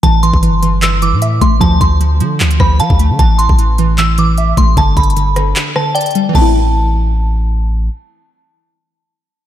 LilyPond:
<<
  \new Staff \with { instrumentName = "Synth bell" } { \time 4/4 \key a \minor \tempo 4 = 152 a''8 c'''4. e'''8 d'''4 c'''8 | a''8 c'''4. r8 b''8 a''4 | a''8 c'''4. e'''8 d'''4 c'''8 | a''8 b''4. r8 a''8 g''4 |
a''2. r4 | r1 | }
  \new Staff \with { instrumentName = "Synth pluck" } { \clef bass \time 4/4 \key a \minor e8 e8 e8 e8 e8 e8 e''8 a8 | f8 f8 f8 f8 f8 f8 f''8 a8 | e8 e8 e8 e8 e8 e8 e''8 a8 | d8 d8 d8 d8 d8 d8 d''8 g8 |
<e a c' e'>1~ | <e a c' e'>1 | }
  \new Staff \with { instrumentName = "808-style bass" } { \clef bass \time 4/4 \key a \minor a,,8. g,,2 a,8. a,,8 | d,8 d,4 d8 d,8 d,8 f16 d,8 d16 | a,,8. a,,2~ a,,8. a,,8 | g,,8 g,,4. r2 |
a,,1 | r1 | }
  \new DrumStaff \with { instrumentName = "Drums" } \drummode { \time 4/4 <hh bd>8 hh16 bd16 hh8 hh8 <hc hh>8 hh8 hh8 <hh bd>8 | <hh bd>8 <hh bd>8 hh8 hh8 <hc hh>16 hh16 <bd ss>8 hh16 bd16 hh8 | <hh bd>8 hh16 bd16 hh8 hh8 <hc hh>8 hh8 hh8 <hh bd>8 | \tuplet 3/2 { <hh bd>16 r16 r16 <hh bd>16 hh16 hh16 } hh8 <hh ss>8 <hc hh>8 ss8 hh32 hh32 hh32 hh32 hh8 |
<cymc bd>4 r4 r4 r4 | r4 r4 r4 r4 | }
>>